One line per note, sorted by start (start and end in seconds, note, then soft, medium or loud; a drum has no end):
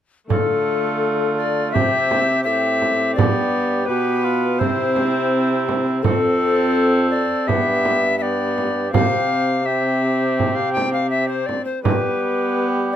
0.29 1.70 D3 medium
0.29 1.75 A3 medium
0.29 1.76 F4 medium
0.29 1.34 A4 medium
0.29 frame drum medium
1.37 1.71 D5 medium
1.72 2.47 C3 medium
1.72 2.46 C4 medium
1.72 2.46 G4 medium
1.72 2.43 E5 medium
1.72 frame drum medium
2.11 frame drum soft
2.44 3.16 A2 soft
2.44 3.21 C4 medium
2.44 3.17 G4 medium
2.44 3.14 E5 medium
2.82 frame drum soft
3.15 3.87 G2 medium
3.15 3.88 G4 medium
3.15 3.87 D5 medium
3.15 frame drum medium
3.19 3.88 B3 medium
3.86 4.59 B2 medium
3.86 4.62 B3 medium
3.86 4.26 G4 medium
3.86 4.60 B4 medium
4.24 4.61 F4 medium
4.59 6.01 C3 medium
4.59 6.04 C4 medium
4.59 6.03 E4 medium
4.59 5.67 C5 medium
4.59 frame drum soft
4.96 frame drum soft
5.69 frame drum soft
6.02 7.31 F2 medium
6.02 7.49 C4 medium
6.02 7.07 A4 medium
6.02 7.49 A4 medium
6.02 frame drum medium
7.10 7.49 D5 medium
7.47 8.90 G2 medium
7.47 8.20 B3 medium
7.47 8.05 G4 medium
7.47 8.18 E5 medium
7.47 frame drum medium
7.85 frame drum soft
8.19 8.92 B3 medium
8.19 8.92 G4 medium
8.19 8.91 D5 medium
8.19 8.23 E5 medium
8.58 frame drum soft
8.93 11.48 C3 medium
8.93 9.65 C4 soft
8.93 9.64 G4 medium
8.93 9.67 F5 medium
8.93 frame drum medium
9.65 11.60 C4 medium
9.65 11.47 G4 medium
9.65 10.57 E5 medium
10.40 frame drum soft
10.55 10.72 F5 medium
10.73 10.92 G5 medium
10.77 frame drum soft
10.93 11.10 F5 medium
11.10 11.28 E5 medium
11.29 11.48 C5 medium
11.46 11.65 D5 medium
11.46 frame drum soft
11.65 11.82 C5 medium
11.83 12.96 G3 medium
11.83 12.96 B3 medium
11.83 12.96 G4 medium
11.83 12.67 B4 medium
11.83 frame drum medium
12.93 12.96 D5 medium